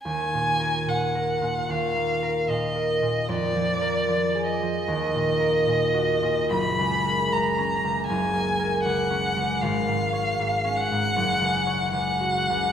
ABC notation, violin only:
X:1
M:4/4
L:1/8
Q:1/4=76
K:Ebm
V:1 name="Violin"
a2 g2 f2 e2 | =d3 e4- e | c'2 b2 a2 g2 | f3 g3 g2 |]